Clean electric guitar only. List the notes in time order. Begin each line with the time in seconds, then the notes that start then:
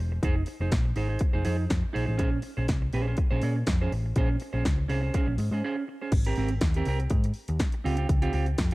0.12 muted clean electric guitar stroke
0.23 D#4 G#4 C5
0.36 muted clean electric guitar stroke
0.47 muted clean electric guitar stroke
0.61 D#4 G#4 C5
0.72 muted clean electric guitar stroke
0.85 muted clean electric guitar stroke
0.96 D#4 G#4 C5
1.09 D#4 G#4 C5
1.33 D#4 G#4 C5
1.45 D#4 G#4 C5
1.58 muted clean electric guitar stroke
1.69 muted clean electric guitar stroke
1.83 muted clean electric guitar stroke
1.93 D#4 G#4 C5
2.06 D#4 G#4
2.18 C#4 G#4 C5
2.31 muted clean electric guitar stroke
2.43 muted clean electric guitar stroke
2.57 C#4 G#4 C5
2.68 muted clean electric guitar stroke
2.82 muted clean electric guitar stroke
2.93 C#4 G#4 C5
3.07 C#4 G#4 C5
3.18 muted clean electric guitar stroke
3.31 C#4 G#4 C5
3.43 C#4 G#4 C#5
3.56 muted clean electric guitar stroke
3.68 muted clean electric guitar stroke
3.81 C#4 G#4 C5
3.93 muted clean electric guitar stroke
4.06 muted clean electric guitar stroke
4.17 C#4 G#4 C5
4.30 muted clean electric guitar stroke
4.42 muted clean electric guitar stroke
4.53 C#4 G#4 C5
4.78 muted clean electric guitar stroke
4.88 C#4 G#4 C5
5.03 C#4 G#4 C5
5.14 C#4 G#4 C5
5.28 muted clean electric guitar stroke
5.39 muted clean electric guitar stroke
5.53 C#4 G#4 C5
5.64 C#4 G#4 C5
5.77 muted clean electric guitar stroke
5.88 muted clean electric guitar stroke
6.01 C#4 G#4 C5
6.13 muted clean electric guitar stroke
6.26 C4 G4 A#4
6.38 C4 G4 A#4
6.51 muted clean electric guitar stroke
6.62 muted clean electric guitar stroke
6.76 C4 G4 A#4
6.88 C4 G4 A#4
7.00 muted clean electric guitar stroke
7.12 muted clean electric guitar stroke
7.25 muted clean electric guitar stroke
7.49 muted clean electric guitar stroke
7.61 muted clean electric guitar stroke
7.74 muted clean electric guitar stroke
7.84 C4 F4 G4
7.97 C4 F4 G4
8.08 muted clean electric guitar stroke
8.22 C4 F4 G4
8.33 C4 F4 G4
8.47 muted clean electric guitar stroke
8.60 muted clean electric guitar stroke